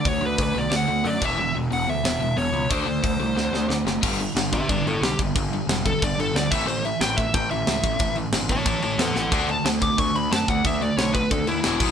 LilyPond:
<<
  \new Staff \with { instrumentName = "Lead electric guitar" } { \time 4/4 \key d \lydian \tempo 4 = 181 cis''8 b'8 b'8 d''8 fis''4 d''8 e''8~ | e''8 r8 fis''8 e''4. cis''4 | c''2. r4 | \key g \lydian r4. <g' e''>8 <b' d''>8 <e' a'>8 g'8 r8 |
r4. a'8 d''8 a'8 d''8 e''8 | c''8 e''8 g''8 e''8 g''8 e''4.~ | e''8 r4 <cis'' a''>8 <cis'' a''>8 <cis'' a''>8 <a' fis''>8 <a' fis''>8 | <d'' fis''>8 a''8 r8 d'''8 cis'''8 b''8 a''8 fis''8 |
e''8 d''8 cis''8 b'8 a'8 e'4. | }
  \new Staff \with { instrumentName = "Distorted electric guitar" } { \clef bass \time 4/4 \key d \lydian <d a>8 <d a>8 <d a>8 <d a>8 <d a>8 <d a>8 <d a>8 <e, b, e>8 | <e, b,>8 <e, b,>8 <e, b,>8 <e, b,>8 <e, b,>8 <e, b,>8 <e, b,>8 <e, b,>8 | <d a d'>8 <d a>8 <d a>8 <d a>8 <d a>8 <d a>8 <d a>8 <d a>8 | \key g \lydian <g, d g>8 <g, d>8 <g, d>8 <g, d>8 <g, d>8 <g, d>8 <g, d>8 <g, d>8 |
<g, d>8 <g, d>8 <g, d>8 <g, d>8 <g, d>8 <g, d>8 <g, d>8 <a, e a>8 | <a, e>8 <a, e>8 <a, e>8 <a, e>8 <a, e>8 <a, e>8 <a, e>8 <a, e>8 | <a, e>8 <a, e>8 <a, e>8 <a, e>8 <a, e>8 <a, e>8 <a, e>8 <a, e>8 | <d a d'>8 <d a>8 <d a>8 <d a>8 <d a>8 <d a>8 <d a>8 <d a>8 |
<d a>8 <d a>8 <d a>8 <d a>8 <d a>8 <d a>8 <e, b, e>8 <b, fis b>8 | }
  \new Staff \with { instrumentName = "Overdriven electric guitar" } { \clef bass \time 4/4 \key d \lydian <d a>8 <d a>8 <d a>8 <d a>8 <d a>8 <d a>8 <d a>8 <e, b, e>8 | <e, b,>8 <e, b,>8 <e, b,>8 <e, b,>8 <e, b,>8 <e, b,>8 <e, b,>8 <e, b,>8 | <d a d'>8 <d a>8 <d a>8 <d a>8 <d a>8 <d a>8 <d a>8 <d a>8 | \key g \lydian <g, d g>8 <g, d>8 <g, d>8 <g, d>8 <g, d>8 <g, d>8 <g, d>8 <g, d>8 |
<g, d>8 <g, d>8 <g, d>8 <g, d>8 <g, d>8 <g, d>8 <g, d>8 <a, e a>8 | <a, e>8 <a, e>8 <a, e>8 <a, e>8 <a, e>8 <a, e>8 <a, e>8 <a, e>8 | <a, e>8 <a, e>8 <a, e>8 <a, e>8 <a, e>8 <a, e>8 <a, e>8 <a, e>8 | <d a d'>8 <d a>8 <d a>8 <d a>8 <d a>8 <d a>8 <d a>8 <d a>8 |
<d a>8 <d a>8 <d a>8 <d a>8 <d a>8 <d a>8 <e, b, e>8 <b, fis b>8 | }
  \new Staff \with { instrumentName = "Picked electric bass" } { \clef bass \time 4/4 \key d \lydian d,8 d,8 d,8 b,,8 d,8 d,8 fis,8 e,,8 | e,,8 e,,8 e,,8 d,8 e,,8 e,,8 e,,8 cis,8 | d,8 d,8 d,8 c,8 d,8 d,8 d,8 fis,,8 | \key g \lydian g,,4 g,,4 g,,8 g,,8 b,,8 g,,8 |
g,,4 e,,4 g,,8 g,,8 d,8 a,,8 | a,,4 a,,4 a,,8 a,,8 cis,8 a,,8 | a,,4 g,,4 a,,8 a,,8 e,8 a,,8 | d,4 d,4 d,8 d,8 fis,8 d,8 |
d,4 b,,4 d,8 dis,8 e,,8 b,,8 | }
  \new DrumStaff \with { instrumentName = "Drums" } \drummode { \time 4/4 <hho bd>4 <hho bd>4 <hho sn>4 hho8 <cymc bd>8 | r4 hho4 <hho sn>4 hho4 | <hho bd>4 <hho bd>4 sn8 sn8 sn8 sn8 | <cymc bd>8 cymc8 <cymc sn>8 <cymc bd>8 <cymc bd>8 cymc8 <cymc sn>8 <cymc bd>8 |
<cymc bd>8 cymc8 <cymc sn>8 <cymc bd>8 <cymc bd>8 cymc8 <cymc sn>8 <cymc bd>8 | cymc8 cymc8 <cymc sn>8 <cymc bd>8 <cymc bd>8 cymc8 <cymc sn>8 <cymc bd>8 | <cymc bd>8 cymc8 <cymc sn>8 <cymc bd>8 <cymc bd>8 cymc8 <cymc sn>8 sn8 | <cymc bd>8 cymc8 <cymc sn>8 <cymc bd>8 <cymc bd>8 cymc8 <cymc sn>8 <cymc bd>8 |
<cymc bd>8 cymc8 <cymc sn>8 <cymc bd>8 <cymc bd>8 cymc8 <cymc sn>8 <cymc bd>8 | }
>>